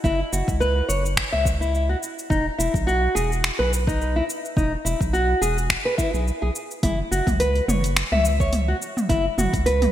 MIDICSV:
0, 0, Header, 1, 5, 480
1, 0, Start_track
1, 0, Tempo, 566038
1, 34, Time_signature, 4, 2, 24, 8
1, 8411, End_track
2, 0, Start_track
2, 0, Title_t, "Singing bowl"
2, 0, Program_c, 0, 14
2, 0, Note_on_c, 0, 64, 71
2, 0, Note_on_c, 0, 75, 74
2, 8411, Note_off_c, 0, 64, 0
2, 8411, Note_off_c, 0, 75, 0
2, 8411, End_track
3, 0, Start_track
3, 0, Title_t, "Nylon-string guitar"
3, 0, Program_c, 1, 24
3, 35, Note_on_c, 1, 64, 94
3, 160, Note_off_c, 1, 64, 0
3, 276, Note_on_c, 1, 66, 74
3, 401, Note_off_c, 1, 66, 0
3, 513, Note_on_c, 1, 71, 93
3, 742, Note_off_c, 1, 71, 0
3, 750, Note_on_c, 1, 73, 71
3, 878, Note_off_c, 1, 73, 0
3, 1123, Note_on_c, 1, 76, 86
3, 1227, Note_off_c, 1, 76, 0
3, 1363, Note_on_c, 1, 64, 94
3, 1591, Note_off_c, 1, 64, 0
3, 1605, Note_on_c, 1, 66, 69
3, 1667, Note_off_c, 1, 66, 0
3, 1950, Note_on_c, 1, 63, 91
3, 2078, Note_off_c, 1, 63, 0
3, 2192, Note_on_c, 1, 64, 73
3, 2319, Note_off_c, 1, 64, 0
3, 2432, Note_on_c, 1, 66, 101
3, 2662, Note_off_c, 1, 66, 0
3, 2670, Note_on_c, 1, 68, 77
3, 2798, Note_off_c, 1, 68, 0
3, 3043, Note_on_c, 1, 71, 89
3, 3147, Note_off_c, 1, 71, 0
3, 3284, Note_on_c, 1, 63, 97
3, 3512, Note_off_c, 1, 63, 0
3, 3528, Note_on_c, 1, 64, 66
3, 3588, Note_off_c, 1, 64, 0
3, 3872, Note_on_c, 1, 63, 91
3, 3999, Note_off_c, 1, 63, 0
3, 4111, Note_on_c, 1, 64, 73
3, 4238, Note_off_c, 1, 64, 0
3, 4352, Note_on_c, 1, 66, 95
3, 4582, Note_off_c, 1, 66, 0
3, 4592, Note_on_c, 1, 68, 71
3, 4719, Note_off_c, 1, 68, 0
3, 4964, Note_on_c, 1, 71, 88
3, 5066, Note_off_c, 1, 71, 0
3, 5070, Note_on_c, 1, 64, 95
3, 5191, Note_off_c, 1, 64, 0
3, 5204, Note_on_c, 1, 68, 67
3, 5302, Note_off_c, 1, 68, 0
3, 5444, Note_on_c, 1, 68, 68
3, 5506, Note_off_c, 1, 68, 0
3, 5793, Note_on_c, 1, 64, 89
3, 5919, Note_off_c, 1, 64, 0
3, 6033, Note_on_c, 1, 66, 74
3, 6159, Note_off_c, 1, 66, 0
3, 6273, Note_on_c, 1, 71, 90
3, 6503, Note_off_c, 1, 71, 0
3, 6515, Note_on_c, 1, 73, 72
3, 6640, Note_off_c, 1, 73, 0
3, 6887, Note_on_c, 1, 76, 98
3, 6989, Note_off_c, 1, 76, 0
3, 7124, Note_on_c, 1, 73, 72
3, 7227, Note_off_c, 1, 73, 0
3, 7362, Note_on_c, 1, 66, 71
3, 7426, Note_off_c, 1, 66, 0
3, 7710, Note_on_c, 1, 64, 95
3, 7838, Note_off_c, 1, 64, 0
3, 7955, Note_on_c, 1, 66, 72
3, 8081, Note_off_c, 1, 66, 0
3, 8190, Note_on_c, 1, 71, 103
3, 8411, Note_off_c, 1, 71, 0
3, 8411, End_track
4, 0, Start_track
4, 0, Title_t, "Analog synth bass"
4, 0, Program_c, 2, 38
4, 33, Note_on_c, 2, 30, 94
4, 199, Note_off_c, 2, 30, 0
4, 278, Note_on_c, 2, 30, 85
4, 363, Note_off_c, 2, 30, 0
4, 407, Note_on_c, 2, 37, 97
4, 695, Note_off_c, 2, 37, 0
4, 755, Note_on_c, 2, 30, 92
4, 1054, Note_off_c, 2, 30, 0
4, 1132, Note_on_c, 2, 37, 78
4, 1657, Note_off_c, 2, 37, 0
4, 1953, Note_on_c, 2, 28, 89
4, 2119, Note_off_c, 2, 28, 0
4, 2196, Note_on_c, 2, 28, 87
4, 2282, Note_off_c, 2, 28, 0
4, 2324, Note_on_c, 2, 35, 99
4, 2613, Note_off_c, 2, 35, 0
4, 2676, Note_on_c, 2, 28, 91
4, 2974, Note_off_c, 2, 28, 0
4, 3048, Note_on_c, 2, 35, 80
4, 3575, Note_off_c, 2, 35, 0
4, 3874, Note_on_c, 2, 28, 96
4, 4040, Note_off_c, 2, 28, 0
4, 4114, Note_on_c, 2, 28, 90
4, 4201, Note_off_c, 2, 28, 0
4, 4246, Note_on_c, 2, 35, 97
4, 4534, Note_off_c, 2, 35, 0
4, 4592, Note_on_c, 2, 28, 89
4, 4892, Note_off_c, 2, 28, 0
4, 5205, Note_on_c, 2, 35, 93
4, 5354, Note_off_c, 2, 35, 0
4, 5449, Note_on_c, 2, 35, 71
4, 5518, Note_off_c, 2, 35, 0
4, 5793, Note_on_c, 2, 30, 93
4, 5959, Note_off_c, 2, 30, 0
4, 6033, Note_on_c, 2, 30, 84
4, 6120, Note_off_c, 2, 30, 0
4, 6164, Note_on_c, 2, 37, 94
4, 6453, Note_off_c, 2, 37, 0
4, 6514, Note_on_c, 2, 30, 98
4, 6813, Note_off_c, 2, 30, 0
4, 6884, Note_on_c, 2, 37, 79
4, 7413, Note_off_c, 2, 37, 0
4, 7711, Note_on_c, 2, 30, 96
4, 7878, Note_off_c, 2, 30, 0
4, 7952, Note_on_c, 2, 30, 81
4, 8040, Note_off_c, 2, 30, 0
4, 8086, Note_on_c, 2, 37, 106
4, 8374, Note_off_c, 2, 37, 0
4, 8411, End_track
5, 0, Start_track
5, 0, Title_t, "Drums"
5, 33, Note_on_c, 9, 36, 103
5, 41, Note_on_c, 9, 82, 32
5, 118, Note_off_c, 9, 36, 0
5, 126, Note_off_c, 9, 82, 0
5, 280, Note_on_c, 9, 82, 81
5, 365, Note_off_c, 9, 82, 0
5, 407, Note_on_c, 9, 36, 95
5, 412, Note_on_c, 9, 82, 45
5, 491, Note_off_c, 9, 36, 0
5, 497, Note_off_c, 9, 82, 0
5, 519, Note_on_c, 9, 82, 32
5, 604, Note_off_c, 9, 82, 0
5, 760, Note_on_c, 9, 82, 76
5, 845, Note_off_c, 9, 82, 0
5, 896, Note_on_c, 9, 82, 44
5, 981, Note_off_c, 9, 82, 0
5, 994, Note_on_c, 9, 36, 57
5, 995, Note_on_c, 9, 26, 79
5, 1002, Note_on_c, 9, 82, 32
5, 1078, Note_off_c, 9, 36, 0
5, 1080, Note_off_c, 9, 26, 0
5, 1087, Note_off_c, 9, 82, 0
5, 1233, Note_on_c, 9, 36, 108
5, 1242, Note_on_c, 9, 82, 84
5, 1318, Note_off_c, 9, 36, 0
5, 1327, Note_off_c, 9, 82, 0
5, 1375, Note_on_c, 9, 82, 43
5, 1460, Note_off_c, 9, 82, 0
5, 1483, Note_on_c, 9, 82, 31
5, 1568, Note_off_c, 9, 82, 0
5, 1721, Note_on_c, 9, 82, 75
5, 1806, Note_off_c, 9, 82, 0
5, 1855, Note_on_c, 9, 82, 45
5, 1940, Note_off_c, 9, 82, 0
5, 1952, Note_on_c, 9, 36, 109
5, 1963, Note_on_c, 9, 82, 32
5, 2037, Note_off_c, 9, 36, 0
5, 2048, Note_off_c, 9, 82, 0
5, 2205, Note_on_c, 9, 82, 78
5, 2290, Note_off_c, 9, 82, 0
5, 2325, Note_on_c, 9, 36, 97
5, 2337, Note_on_c, 9, 82, 42
5, 2410, Note_off_c, 9, 36, 0
5, 2422, Note_off_c, 9, 82, 0
5, 2445, Note_on_c, 9, 82, 33
5, 2530, Note_off_c, 9, 82, 0
5, 2684, Note_on_c, 9, 82, 75
5, 2768, Note_off_c, 9, 82, 0
5, 2819, Note_on_c, 9, 82, 44
5, 2903, Note_off_c, 9, 82, 0
5, 2918, Note_on_c, 9, 26, 69
5, 2925, Note_on_c, 9, 82, 32
5, 3003, Note_off_c, 9, 26, 0
5, 3010, Note_off_c, 9, 82, 0
5, 3166, Note_on_c, 9, 82, 86
5, 3251, Note_off_c, 9, 82, 0
5, 3285, Note_on_c, 9, 36, 111
5, 3297, Note_on_c, 9, 82, 45
5, 3370, Note_off_c, 9, 36, 0
5, 3382, Note_off_c, 9, 82, 0
5, 3406, Note_on_c, 9, 82, 31
5, 3491, Note_off_c, 9, 82, 0
5, 3644, Note_on_c, 9, 82, 72
5, 3729, Note_off_c, 9, 82, 0
5, 3777, Note_on_c, 9, 82, 43
5, 3861, Note_off_c, 9, 82, 0
5, 3873, Note_on_c, 9, 36, 114
5, 3884, Note_on_c, 9, 82, 31
5, 3958, Note_off_c, 9, 36, 0
5, 3969, Note_off_c, 9, 82, 0
5, 4123, Note_on_c, 9, 82, 82
5, 4207, Note_off_c, 9, 82, 0
5, 4246, Note_on_c, 9, 36, 97
5, 4254, Note_on_c, 9, 82, 43
5, 4330, Note_off_c, 9, 36, 0
5, 4339, Note_off_c, 9, 82, 0
5, 4361, Note_on_c, 9, 82, 33
5, 4445, Note_off_c, 9, 82, 0
5, 4600, Note_on_c, 9, 82, 79
5, 4684, Note_off_c, 9, 82, 0
5, 4732, Note_on_c, 9, 82, 43
5, 4817, Note_off_c, 9, 82, 0
5, 4832, Note_on_c, 9, 36, 58
5, 4834, Note_on_c, 9, 26, 73
5, 4841, Note_on_c, 9, 82, 34
5, 4917, Note_off_c, 9, 36, 0
5, 4919, Note_off_c, 9, 26, 0
5, 4926, Note_off_c, 9, 82, 0
5, 5073, Note_on_c, 9, 36, 108
5, 5079, Note_on_c, 9, 82, 81
5, 5158, Note_off_c, 9, 36, 0
5, 5163, Note_off_c, 9, 82, 0
5, 5212, Note_on_c, 9, 82, 45
5, 5297, Note_off_c, 9, 82, 0
5, 5322, Note_on_c, 9, 82, 34
5, 5407, Note_off_c, 9, 82, 0
5, 5559, Note_on_c, 9, 82, 76
5, 5644, Note_off_c, 9, 82, 0
5, 5691, Note_on_c, 9, 82, 41
5, 5776, Note_off_c, 9, 82, 0
5, 5792, Note_on_c, 9, 36, 111
5, 5793, Note_on_c, 9, 45, 75
5, 5793, Note_on_c, 9, 46, 57
5, 5800, Note_on_c, 9, 82, 31
5, 5877, Note_off_c, 9, 36, 0
5, 5878, Note_off_c, 9, 45, 0
5, 5878, Note_off_c, 9, 46, 0
5, 5885, Note_off_c, 9, 82, 0
5, 6041, Note_on_c, 9, 82, 76
5, 6126, Note_off_c, 9, 82, 0
5, 6165, Note_on_c, 9, 36, 99
5, 6169, Note_on_c, 9, 45, 69
5, 6169, Note_on_c, 9, 46, 37
5, 6176, Note_on_c, 9, 82, 44
5, 6249, Note_off_c, 9, 36, 0
5, 6253, Note_off_c, 9, 45, 0
5, 6253, Note_off_c, 9, 46, 0
5, 6261, Note_off_c, 9, 82, 0
5, 6275, Note_on_c, 9, 46, 58
5, 6283, Note_on_c, 9, 82, 30
5, 6360, Note_off_c, 9, 46, 0
5, 6368, Note_off_c, 9, 82, 0
5, 6407, Note_on_c, 9, 46, 28
5, 6492, Note_off_c, 9, 46, 0
5, 6516, Note_on_c, 9, 45, 77
5, 6523, Note_on_c, 9, 82, 70
5, 6601, Note_off_c, 9, 45, 0
5, 6608, Note_off_c, 9, 82, 0
5, 6648, Note_on_c, 9, 46, 42
5, 6656, Note_on_c, 9, 82, 43
5, 6733, Note_off_c, 9, 46, 0
5, 6740, Note_off_c, 9, 82, 0
5, 6755, Note_on_c, 9, 26, 69
5, 6755, Note_on_c, 9, 46, 59
5, 6762, Note_on_c, 9, 82, 32
5, 6839, Note_off_c, 9, 26, 0
5, 6839, Note_off_c, 9, 46, 0
5, 6847, Note_off_c, 9, 82, 0
5, 6884, Note_on_c, 9, 45, 73
5, 6969, Note_off_c, 9, 45, 0
5, 6997, Note_on_c, 9, 82, 83
5, 7082, Note_off_c, 9, 82, 0
5, 7124, Note_on_c, 9, 36, 108
5, 7131, Note_on_c, 9, 82, 43
5, 7209, Note_off_c, 9, 36, 0
5, 7216, Note_off_c, 9, 82, 0
5, 7230, Note_on_c, 9, 45, 72
5, 7230, Note_on_c, 9, 46, 60
5, 7238, Note_on_c, 9, 82, 30
5, 7315, Note_off_c, 9, 45, 0
5, 7315, Note_off_c, 9, 46, 0
5, 7323, Note_off_c, 9, 82, 0
5, 7480, Note_on_c, 9, 82, 73
5, 7564, Note_off_c, 9, 82, 0
5, 7606, Note_on_c, 9, 45, 72
5, 7614, Note_on_c, 9, 82, 43
5, 7691, Note_off_c, 9, 45, 0
5, 7698, Note_off_c, 9, 82, 0
5, 7711, Note_on_c, 9, 36, 109
5, 7714, Note_on_c, 9, 46, 63
5, 7722, Note_on_c, 9, 82, 29
5, 7796, Note_off_c, 9, 36, 0
5, 7799, Note_off_c, 9, 46, 0
5, 7806, Note_off_c, 9, 82, 0
5, 7953, Note_on_c, 9, 45, 79
5, 7961, Note_on_c, 9, 82, 71
5, 8038, Note_off_c, 9, 45, 0
5, 8045, Note_off_c, 9, 82, 0
5, 8084, Note_on_c, 9, 36, 97
5, 8087, Note_on_c, 9, 46, 42
5, 8094, Note_on_c, 9, 82, 41
5, 8169, Note_off_c, 9, 36, 0
5, 8172, Note_off_c, 9, 46, 0
5, 8179, Note_off_c, 9, 82, 0
5, 8194, Note_on_c, 9, 46, 62
5, 8202, Note_on_c, 9, 82, 30
5, 8279, Note_off_c, 9, 46, 0
5, 8287, Note_off_c, 9, 82, 0
5, 8327, Note_on_c, 9, 45, 79
5, 8327, Note_on_c, 9, 46, 29
5, 8411, Note_off_c, 9, 45, 0
5, 8411, Note_off_c, 9, 46, 0
5, 8411, End_track
0, 0, End_of_file